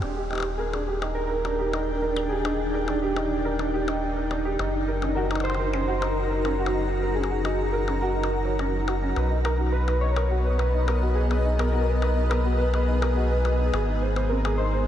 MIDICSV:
0, 0, Header, 1, 6, 480
1, 0, Start_track
1, 0, Tempo, 571429
1, 18, Time_signature, 4, 2, 24, 8
1, 12494, End_track
2, 0, Start_track
2, 0, Title_t, "Synth keys"
2, 0, Program_c, 0, 88
2, 6, Note_on_c, 0, 67, 90
2, 458, Note_off_c, 0, 67, 0
2, 483, Note_on_c, 0, 68, 86
2, 963, Note_on_c, 0, 70, 100
2, 985, Note_off_c, 0, 68, 0
2, 1897, Note_off_c, 0, 70, 0
2, 1923, Note_on_c, 0, 68, 92
2, 2404, Note_on_c, 0, 67, 75
2, 2425, Note_off_c, 0, 68, 0
2, 3337, Note_off_c, 0, 67, 0
2, 4326, Note_on_c, 0, 70, 96
2, 4566, Note_on_c, 0, 72, 103
2, 4580, Note_off_c, 0, 70, 0
2, 5046, Note_on_c, 0, 70, 93
2, 5067, Note_off_c, 0, 72, 0
2, 5525, Note_on_c, 0, 66, 81
2, 5547, Note_off_c, 0, 70, 0
2, 5978, Note_off_c, 0, 66, 0
2, 6007, Note_on_c, 0, 68, 86
2, 6486, Note_on_c, 0, 70, 88
2, 6507, Note_off_c, 0, 68, 0
2, 6597, Note_off_c, 0, 70, 0
2, 6727, Note_on_c, 0, 70, 84
2, 7419, Note_off_c, 0, 70, 0
2, 8167, Note_on_c, 0, 71, 99
2, 8395, Note_off_c, 0, 71, 0
2, 8407, Note_on_c, 0, 73, 103
2, 8816, Note_off_c, 0, 73, 0
2, 8826, Note_on_c, 0, 73, 74
2, 8887, Note_on_c, 0, 71, 91
2, 8891, Note_off_c, 0, 73, 0
2, 9367, Note_on_c, 0, 68, 86
2, 9387, Note_off_c, 0, 71, 0
2, 9846, Note_on_c, 0, 70, 91
2, 9867, Note_off_c, 0, 68, 0
2, 10299, Note_off_c, 0, 70, 0
2, 10325, Note_on_c, 0, 71, 85
2, 10436, Note_off_c, 0, 71, 0
2, 10565, Note_on_c, 0, 71, 86
2, 11258, Note_off_c, 0, 71, 0
2, 12005, Note_on_c, 0, 70, 95
2, 12234, Note_off_c, 0, 70, 0
2, 12245, Note_on_c, 0, 72, 111
2, 12494, Note_off_c, 0, 72, 0
2, 12494, End_track
3, 0, Start_track
3, 0, Title_t, "Ambient pad"
3, 0, Program_c, 1, 92
3, 19, Note_on_c, 1, 62, 78
3, 19, Note_on_c, 1, 63, 70
3, 20, Note_on_c, 1, 79, 85
3, 3825, Note_off_c, 1, 62, 0
3, 3825, Note_off_c, 1, 79, 0
3, 3859, Note_on_c, 1, 66, 69
3, 3859, Note_on_c, 1, 82, 83
3, 7665, Note_off_c, 1, 63, 0
3, 7665, Note_off_c, 1, 66, 0
3, 7696, Note_on_c, 1, 59, 77
3, 7696, Note_on_c, 1, 75, 82
3, 9585, Note_off_c, 1, 82, 0
3, 9616, Note_on_c, 1, 68, 87
3, 11503, Note_off_c, 1, 75, 0
3, 11504, Note_off_c, 1, 59, 0
3, 11518, Note_off_c, 1, 68, 0
3, 11538, Note_on_c, 1, 56, 76
3, 11538, Note_on_c, 1, 63, 76
3, 11538, Note_on_c, 1, 72, 86
3, 12494, Note_off_c, 1, 56, 0
3, 12494, Note_off_c, 1, 63, 0
3, 12494, Note_off_c, 1, 72, 0
3, 12494, End_track
4, 0, Start_track
4, 0, Title_t, "Felt piano"
4, 0, Program_c, 2, 0
4, 18, Note_on_c, 2, 62, 70
4, 58, Note_off_c, 2, 62, 0
4, 138, Note_on_c, 2, 67, 92
4, 205, Note_off_c, 2, 67, 0
4, 258, Note_on_c, 2, 63, 68
4, 358, Note_off_c, 2, 63, 0
4, 498, Note_on_c, 2, 70, 77
4, 598, Note_off_c, 2, 70, 0
4, 618, Note_on_c, 2, 62, 70
4, 658, Note_off_c, 2, 62, 0
4, 739, Note_on_c, 2, 67, 94
4, 805, Note_off_c, 2, 67, 0
4, 858, Note_on_c, 2, 63, 72
4, 959, Note_off_c, 2, 63, 0
4, 1098, Note_on_c, 2, 70, 67
4, 1198, Note_off_c, 2, 70, 0
4, 1218, Note_on_c, 2, 62, 69
4, 1258, Note_off_c, 2, 62, 0
4, 1337, Note_on_c, 2, 67, 93
4, 1405, Note_off_c, 2, 67, 0
4, 1457, Note_on_c, 2, 63, 71
4, 1558, Note_off_c, 2, 63, 0
4, 1698, Note_on_c, 2, 70, 67
4, 1798, Note_off_c, 2, 70, 0
4, 1818, Note_on_c, 2, 62, 69
4, 1858, Note_off_c, 2, 62, 0
4, 1938, Note_on_c, 2, 67, 88
4, 2005, Note_off_c, 2, 67, 0
4, 2058, Note_on_c, 2, 63, 67
4, 2158, Note_off_c, 2, 63, 0
4, 2298, Note_on_c, 2, 70, 71
4, 2398, Note_off_c, 2, 70, 0
4, 2418, Note_on_c, 2, 62, 74
4, 2458, Note_off_c, 2, 62, 0
4, 2538, Note_on_c, 2, 67, 93
4, 2605, Note_off_c, 2, 67, 0
4, 2658, Note_on_c, 2, 63, 71
4, 2758, Note_off_c, 2, 63, 0
4, 2898, Note_on_c, 2, 70, 81
4, 2999, Note_off_c, 2, 70, 0
4, 3018, Note_on_c, 2, 62, 70
4, 3058, Note_off_c, 2, 62, 0
4, 3138, Note_on_c, 2, 67, 87
4, 3205, Note_off_c, 2, 67, 0
4, 3259, Note_on_c, 2, 63, 72
4, 3359, Note_off_c, 2, 63, 0
4, 3498, Note_on_c, 2, 70, 69
4, 3598, Note_off_c, 2, 70, 0
4, 3618, Note_on_c, 2, 62, 72
4, 3658, Note_off_c, 2, 62, 0
4, 3738, Note_on_c, 2, 67, 94
4, 3805, Note_off_c, 2, 67, 0
4, 3858, Note_on_c, 2, 63, 70
4, 3958, Note_off_c, 2, 63, 0
4, 4098, Note_on_c, 2, 70, 71
4, 4198, Note_off_c, 2, 70, 0
4, 4219, Note_on_c, 2, 61, 66
4, 4259, Note_off_c, 2, 61, 0
4, 4338, Note_on_c, 2, 66, 97
4, 4405, Note_off_c, 2, 66, 0
4, 4459, Note_on_c, 2, 63, 73
4, 4559, Note_off_c, 2, 63, 0
4, 4699, Note_on_c, 2, 70, 73
4, 4799, Note_off_c, 2, 70, 0
4, 4818, Note_on_c, 2, 61, 76
4, 4858, Note_off_c, 2, 61, 0
4, 4938, Note_on_c, 2, 66, 96
4, 5005, Note_off_c, 2, 66, 0
4, 5059, Note_on_c, 2, 63, 68
4, 5159, Note_off_c, 2, 63, 0
4, 5299, Note_on_c, 2, 70, 72
4, 5399, Note_off_c, 2, 70, 0
4, 5419, Note_on_c, 2, 61, 69
4, 5459, Note_off_c, 2, 61, 0
4, 5538, Note_on_c, 2, 66, 90
4, 5605, Note_off_c, 2, 66, 0
4, 5658, Note_on_c, 2, 63, 65
4, 5759, Note_off_c, 2, 63, 0
4, 5898, Note_on_c, 2, 70, 70
4, 5999, Note_off_c, 2, 70, 0
4, 6018, Note_on_c, 2, 61, 69
4, 6058, Note_off_c, 2, 61, 0
4, 6138, Note_on_c, 2, 66, 87
4, 6205, Note_off_c, 2, 66, 0
4, 6259, Note_on_c, 2, 63, 79
4, 6359, Note_off_c, 2, 63, 0
4, 6499, Note_on_c, 2, 70, 74
4, 6599, Note_off_c, 2, 70, 0
4, 6618, Note_on_c, 2, 61, 67
4, 6658, Note_off_c, 2, 61, 0
4, 6738, Note_on_c, 2, 66, 95
4, 6805, Note_off_c, 2, 66, 0
4, 6858, Note_on_c, 2, 63, 71
4, 6958, Note_off_c, 2, 63, 0
4, 6978, Note_on_c, 2, 66, 68
4, 7045, Note_off_c, 2, 66, 0
4, 7098, Note_on_c, 2, 73, 69
4, 7165, Note_off_c, 2, 73, 0
4, 7218, Note_on_c, 2, 61, 74
4, 7285, Note_off_c, 2, 61, 0
4, 7458, Note_on_c, 2, 66, 67
4, 7525, Note_off_c, 2, 66, 0
4, 7578, Note_on_c, 2, 61, 68
4, 7618, Note_off_c, 2, 61, 0
4, 7698, Note_on_c, 2, 71, 73
4, 7798, Note_off_c, 2, 71, 0
4, 7818, Note_on_c, 2, 63, 70
4, 7858, Note_off_c, 2, 63, 0
4, 7937, Note_on_c, 2, 70, 90
4, 8005, Note_off_c, 2, 70, 0
4, 8058, Note_on_c, 2, 66, 70
4, 8158, Note_off_c, 2, 66, 0
4, 8178, Note_on_c, 2, 71, 78
4, 8245, Note_off_c, 2, 71, 0
4, 8298, Note_on_c, 2, 71, 70
4, 8398, Note_off_c, 2, 71, 0
4, 8418, Note_on_c, 2, 63, 69
4, 8458, Note_off_c, 2, 63, 0
4, 8538, Note_on_c, 2, 70, 94
4, 8605, Note_off_c, 2, 70, 0
4, 8658, Note_on_c, 2, 66, 78
4, 8758, Note_off_c, 2, 66, 0
4, 8777, Note_on_c, 2, 71, 71
4, 8845, Note_off_c, 2, 71, 0
4, 8898, Note_on_c, 2, 71, 70
4, 8998, Note_off_c, 2, 71, 0
4, 9018, Note_on_c, 2, 63, 69
4, 9058, Note_off_c, 2, 63, 0
4, 9138, Note_on_c, 2, 70, 88
4, 9205, Note_off_c, 2, 70, 0
4, 9258, Note_on_c, 2, 66, 68
4, 9358, Note_off_c, 2, 66, 0
4, 9378, Note_on_c, 2, 71, 69
4, 9445, Note_off_c, 2, 71, 0
4, 9497, Note_on_c, 2, 71, 69
4, 9598, Note_off_c, 2, 71, 0
4, 9617, Note_on_c, 2, 63, 75
4, 9658, Note_off_c, 2, 63, 0
4, 9737, Note_on_c, 2, 70, 91
4, 9805, Note_off_c, 2, 70, 0
4, 9857, Note_on_c, 2, 66, 69
4, 9958, Note_off_c, 2, 66, 0
4, 9977, Note_on_c, 2, 71, 70
4, 10044, Note_off_c, 2, 71, 0
4, 10097, Note_on_c, 2, 71, 79
4, 10198, Note_off_c, 2, 71, 0
4, 10217, Note_on_c, 2, 63, 71
4, 10258, Note_off_c, 2, 63, 0
4, 10337, Note_on_c, 2, 70, 94
4, 10404, Note_off_c, 2, 70, 0
4, 10457, Note_on_c, 2, 66, 69
4, 10558, Note_off_c, 2, 66, 0
4, 10577, Note_on_c, 2, 71, 81
4, 10645, Note_off_c, 2, 71, 0
4, 10697, Note_on_c, 2, 71, 72
4, 10798, Note_off_c, 2, 71, 0
4, 10817, Note_on_c, 2, 63, 70
4, 10858, Note_off_c, 2, 63, 0
4, 10937, Note_on_c, 2, 70, 93
4, 11004, Note_off_c, 2, 70, 0
4, 11057, Note_on_c, 2, 66, 75
4, 11158, Note_off_c, 2, 66, 0
4, 11177, Note_on_c, 2, 71, 73
4, 11245, Note_off_c, 2, 71, 0
4, 11298, Note_on_c, 2, 71, 70
4, 11398, Note_off_c, 2, 71, 0
4, 11417, Note_on_c, 2, 63, 70
4, 11458, Note_off_c, 2, 63, 0
4, 11537, Note_on_c, 2, 68, 94
4, 11605, Note_off_c, 2, 68, 0
4, 11657, Note_on_c, 2, 63, 67
4, 11758, Note_off_c, 2, 63, 0
4, 11777, Note_on_c, 2, 72, 69
4, 11845, Note_off_c, 2, 72, 0
4, 11898, Note_on_c, 2, 72, 74
4, 11998, Note_off_c, 2, 72, 0
4, 12017, Note_on_c, 2, 60, 77
4, 12058, Note_off_c, 2, 60, 0
4, 12137, Note_on_c, 2, 68, 92
4, 12204, Note_off_c, 2, 68, 0
4, 12258, Note_on_c, 2, 63, 74
4, 12358, Note_off_c, 2, 63, 0
4, 12377, Note_on_c, 2, 72, 72
4, 12445, Note_off_c, 2, 72, 0
4, 12494, End_track
5, 0, Start_track
5, 0, Title_t, "Analog synth bass"
5, 0, Program_c, 3, 38
5, 18, Note_on_c, 3, 27, 88
5, 3834, Note_off_c, 3, 27, 0
5, 3858, Note_on_c, 3, 30, 83
5, 7674, Note_off_c, 3, 30, 0
5, 7699, Note_on_c, 3, 35, 82
5, 11515, Note_off_c, 3, 35, 0
5, 11538, Note_on_c, 3, 32, 86
5, 12494, Note_off_c, 3, 32, 0
5, 12494, End_track
6, 0, Start_track
6, 0, Title_t, "Percussion blips"
6, 17, Note_on_c, 9, 76, 50
6, 101, Note_off_c, 9, 76, 0
6, 257, Note_on_c, 9, 76, 34
6, 277, Note_off_c, 9, 76, 0
6, 277, Note_on_c, 9, 76, 42
6, 297, Note_off_c, 9, 76, 0
6, 297, Note_on_c, 9, 76, 45
6, 317, Note_off_c, 9, 76, 0
6, 317, Note_on_c, 9, 76, 57
6, 337, Note_off_c, 9, 76, 0
6, 337, Note_on_c, 9, 76, 60
6, 357, Note_off_c, 9, 76, 0
6, 357, Note_on_c, 9, 76, 68
6, 441, Note_off_c, 9, 76, 0
6, 617, Note_on_c, 9, 76, 51
6, 701, Note_off_c, 9, 76, 0
6, 857, Note_on_c, 9, 76, 73
6, 941, Note_off_c, 9, 76, 0
6, 1217, Note_on_c, 9, 76, 48
6, 1301, Note_off_c, 9, 76, 0
6, 1457, Note_on_c, 9, 76, 70
6, 1541, Note_off_c, 9, 76, 0
6, 1818, Note_on_c, 9, 76, 51
6, 1902, Note_off_c, 9, 76, 0
6, 2058, Note_on_c, 9, 76, 73
6, 2142, Note_off_c, 9, 76, 0
6, 2418, Note_on_c, 9, 76, 49
6, 2502, Note_off_c, 9, 76, 0
6, 2658, Note_on_c, 9, 76, 68
6, 2742, Note_off_c, 9, 76, 0
6, 3019, Note_on_c, 9, 76, 46
6, 3103, Note_off_c, 9, 76, 0
6, 3259, Note_on_c, 9, 76, 72
6, 3343, Note_off_c, 9, 76, 0
6, 3619, Note_on_c, 9, 76, 47
6, 3703, Note_off_c, 9, 76, 0
6, 3859, Note_on_c, 9, 76, 73
6, 3943, Note_off_c, 9, 76, 0
6, 4219, Note_on_c, 9, 76, 46
6, 4303, Note_off_c, 9, 76, 0
6, 4458, Note_on_c, 9, 76, 67
6, 4498, Note_off_c, 9, 76, 0
6, 4498, Note_on_c, 9, 76, 58
6, 4538, Note_off_c, 9, 76, 0
6, 4538, Note_on_c, 9, 76, 46
6, 4578, Note_off_c, 9, 76, 0
6, 4578, Note_on_c, 9, 76, 35
6, 4618, Note_off_c, 9, 76, 0
6, 4618, Note_on_c, 9, 76, 30
6, 4658, Note_off_c, 9, 76, 0
6, 4658, Note_on_c, 9, 76, 24
6, 4742, Note_off_c, 9, 76, 0
6, 4817, Note_on_c, 9, 76, 44
6, 4901, Note_off_c, 9, 76, 0
6, 5057, Note_on_c, 9, 76, 67
6, 5141, Note_off_c, 9, 76, 0
6, 5418, Note_on_c, 9, 76, 49
6, 5502, Note_off_c, 9, 76, 0
6, 5598, Note_on_c, 9, 76, 64
6, 5682, Note_off_c, 9, 76, 0
6, 6078, Note_on_c, 9, 76, 47
6, 6162, Note_off_c, 9, 76, 0
6, 6257, Note_on_c, 9, 76, 70
6, 6341, Note_off_c, 9, 76, 0
6, 6618, Note_on_c, 9, 76, 43
6, 6702, Note_off_c, 9, 76, 0
6, 6917, Note_on_c, 9, 76, 65
6, 7001, Note_off_c, 9, 76, 0
6, 7218, Note_on_c, 9, 76, 46
6, 7302, Note_off_c, 9, 76, 0
6, 7458, Note_on_c, 9, 76, 69
6, 7542, Note_off_c, 9, 76, 0
6, 7698, Note_on_c, 9, 76, 46
6, 7782, Note_off_c, 9, 76, 0
6, 7937, Note_on_c, 9, 76, 75
6, 8021, Note_off_c, 9, 76, 0
6, 8298, Note_on_c, 9, 76, 48
6, 8382, Note_off_c, 9, 76, 0
6, 8538, Note_on_c, 9, 76, 70
6, 8622, Note_off_c, 9, 76, 0
6, 8898, Note_on_c, 9, 76, 46
6, 8982, Note_off_c, 9, 76, 0
6, 9139, Note_on_c, 9, 76, 68
6, 9223, Note_off_c, 9, 76, 0
6, 9499, Note_on_c, 9, 76, 44
6, 9583, Note_off_c, 9, 76, 0
6, 9739, Note_on_c, 9, 76, 75
6, 9823, Note_off_c, 9, 76, 0
6, 10099, Note_on_c, 9, 76, 51
6, 10183, Note_off_c, 9, 76, 0
6, 10339, Note_on_c, 9, 76, 71
6, 10423, Note_off_c, 9, 76, 0
6, 10699, Note_on_c, 9, 76, 45
6, 10783, Note_off_c, 9, 76, 0
6, 10939, Note_on_c, 9, 76, 75
6, 11023, Note_off_c, 9, 76, 0
6, 11298, Note_on_c, 9, 76, 46
6, 11382, Note_off_c, 9, 76, 0
6, 11538, Note_on_c, 9, 76, 75
6, 11622, Note_off_c, 9, 76, 0
6, 11898, Note_on_c, 9, 76, 47
6, 11982, Note_off_c, 9, 76, 0
6, 12138, Note_on_c, 9, 76, 76
6, 12222, Note_off_c, 9, 76, 0
6, 12494, End_track
0, 0, End_of_file